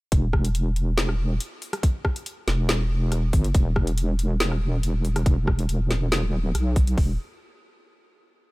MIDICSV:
0, 0, Header, 1, 3, 480
1, 0, Start_track
1, 0, Key_signature, 1, "minor"
1, 0, Tempo, 428571
1, 133, Time_signature, 4, 2, 24, 8
1, 9539, End_track
2, 0, Start_track
2, 0, Title_t, "Wobble bass"
2, 0, Program_c, 0, 39
2, 133, Note_on_c, 0, 28, 95
2, 1555, Note_off_c, 0, 28, 0
2, 2773, Note_on_c, 0, 28, 95
2, 3715, Note_off_c, 0, 28, 0
2, 3732, Note_on_c, 0, 31, 97
2, 3954, Note_off_c, 0, 31, 0
2, 3972, Note_on_c, 0, 28, 96
2, 5394, Note_off_c, 0, 28, 0
2, 5413, Note_on_c, 0, 28, 101
2, 6355, Note_off_c, 0, 28, 0
2, 6373, Note_on_c, 0, 28, 99
2, 7033, Note_off_c, 0, 28, 0
2, 7033, Note_on_c, 0, 27, 99
2, 7315, Note_off_c, 0, 27, 0
2, 7331, Note_on_c, 0, 35, 102
2, 7794, Note_off_c, 0, 35, 0
2, 7813, Note_on_c, 0, 28, 102
2, 8036, Note_off_c, 0, 28, 0
2, 9539, End_track
3, 0, Start_track
3, 0, Title_t, "Drums"
3, 133, Note_on_c, 9, 36, 120
3, 133, Note_on_c, 9, 42, 84
3, 245, Note_off_c, 9, 36, 0
3, 245, Note_off_c, 9, 42, 0
3, 373, Note_on_c, 9, 36, 61
3, 373, Note_on_c, 9, 37, 83
3, 485, Note_off_c, 9, 36, 0
3, 485, Note_off_c, 9, 37, 0
3, 499, Note_on_c, 9, 42, 58
3, 611, Note_off_c, 9, 42, 0
3, 614, Note_on_c, 9, 42, 79
3, 726, Note_off_c, 9, 42, 0
3, 854, Note_on_c, 9, 42, 55
3, 966, Note_off_c, 9, 42, 0
3, 1093, Note_on_c, 9, 38, 123
3, 1093, Note_on_c, 9, 42, 81
3, 1205, Note_off_c, 9, 38, 0
3, 1205, Note_off_c, 9, 42, 0
3, 1218, Note_on_c, 9, 37, 65
3, 1330, Note_off_c, 9, 37, 0
3, 1574, Note_on_c, 9, 42, 84
3, 1686, Note_off_c, 9, 42, 0
3, 1814, Note_on_c, 9, 46, 93
3, 1926, Note_off_c, 9, 46, 0
3, 1939, Note_on_c, 9, 37, 80
3, 1939, Note_on_c, 9, 42, 56
3, 2051, Note_off_c, 9, 37, 0
3, 2051, Note_off_c, 9, 42, 0
3, 2052, Note_on_c, 9, 36, 127
3, 2054, Note_on_c, 9, 42, 79
3, 2164, Note_off_c, 9, 36, 0
3, 2166, Note_off_c, 9, 42, 0
3, 2292, Note_on_c, 9, 36, 64
3, 2294, Note_on_c, 9, 37, 83
3, 2404, Note_off_c, 9, 36, 0
3, 2406, Note_off_c, 9, 37, 0
3, 2420, Note_on_c, 9, 42, 59
3, 2532, Note_off_c, 9, 42, 0
3, 2533, Note_on_c, 9, 42, 80
3, 2645, Note_off_c, 9, 42, 0
3, 2773, Note_on_c, 9, 38, 67
3, 2773, Note_on_c, 9, 42, 58
3, 2885, Note_off_c, 9, 38, 0
3, 2885, Note_off_c, 9, 42, 0
3, 3012, Note_on_c, 9, 38, 127
3, 3012, Note_on_c, 9, 42, 85
3, 3124, Note_off_c, 9, 38, 0
3, 3124, Note_off_c, 9, 42, 0
3, 3492, Note_on_c, 9, 37, 51
3, 3492, Note_on_c, 9, 42, 86
3, 3604, Note_off_c, 9, 37, 0
3, 3604, Note_off_c, 9, 42, 0
3, 3731, Note_on_c, 9, 46, 98
3, 3732, Note_on_c, 9, 36, 114
3, 3843, Note_off_c, 9, 46, 0
3, 3844, Note_off_c, 9, 36, 0
3, 3858, Note_on_c, 9, 42, 56
3, 3970, Note_off_c, 9, 42, 0
3, 3971, Note_on_c, 9, 42, 81
3, 3972, Note_on_c, 9, 36, 127
3, 4083, Note_off_c, 9, 42, 0
3, 4084, Note_off_c, 9, 36, 0
3, 4211, Note_on_c, 9, 37, 81
3, 4212, Note_on_c, 9, 36, 65
3, 4323, Note_off_c, 9, 37, 0
3, 4324, Note_off_c, 9, 36, 0
3, 4337, Note_on_c, 9, 42, 54
3, 4449, Note_off_c, 9, 42, 0
3, 4453, Note_on_c, 9, 42, 78
3, 4565, Note_off_c, 9, 42, 0
3, 4692, Note_on_c, 9, 42, 56
3, 4804, Note_off_c, 9, 42, 0
3, 4931, Note_on_c, 9, 38, 126
3, 4931, Note_on_c, 9, 42, 81
3, 5043, Note_off_c, 9, 38, 0
3, 5043, Note_off_c, 9, 42, 0
3, 5058, Note_on_c, 9, 37, 63
3, 5170, Note_off_c, 9, 37, 0
3, 5413, Note_on_c, 9, 42, 84
3, 5525, Note_off_c, 9, 42, 0
3, 5652, Note_on_c, 9, 46, 85
3, 5764, Note_off_c, 9, 46, 0
3, 5779, Note_on_c, 9, 37, 75
3, 5779, Note_on_c, 9, 42, 55
3, 5891, Note_off_c, 9, 37, 0
3, 5891, Note_off_c, 9, 42, 0
3, 5892, Note_on_c, 9, 36, 121
3, 5892, Note_on_c, 9, 42, 77
3, 6004, Note_off_c, 9, 36, 0
3, 6004, Note_off_c, 9, 42, 0
3, 6131, Note_on_c, 9, 36, 63
3, 6132, Note_on_c, 9, 37, 83
3, 6243, Note_off_c, 9, 36, 0
3, 6244, Note_off_c, 9, 37, 0
3, 6258, Note_on_c, 9, 42, 54
3, 6370, Note_off_c, 9, 42, 0
3, 6373, Note_on_c, 9, 42, 75
3, 6485, Note_off_c, 9, 42, 0
3, 6615, Note_on_c, 9, 38, 68
3, 6615, Note_on_c, 9, 42, 53
3, 6727, Note_off_c, 9, 38, 0
3, 6727, Note_off_c, 9, 42, 0
3, 6855, Note_on_c, 9, 38, 126
3, 6855, Note_on_c, 9, 42, 80
3, 6967, Note_off_c, 9, 38, 0
3, 6967, Note_off_c, 9, 42, 0
3, 7335, Note_on_c, 9, 37, 55
3, 7335, Note_on_c, 9, 42, 83
3, 7447, Note_off_c, 9, 37, 0
3, 7447, Note_off_c, 9, 42, 0
3, 7572, Note_on_c, 9, 36, 114
3, 7573, Note_on_c, 9, 46, 89
3, 7684, Note_off_c, 9, 36, 0
3, 7685, Note_off_c, 9, 46, 0
3, 7699, Note_on_c, 9, 42, 52
3, 7811, Note_off_c, 9, 42, 0
3, 7813, Note_on_c, 9, 36, 106
3, 7813, Note_on_c, 9, 46, 86
3, 7925, Note_off_c, 9, 36, 0
3, 7925, Note_off_c, 9, 46, 0
3, 9539, End_track
0, 0, End_of_file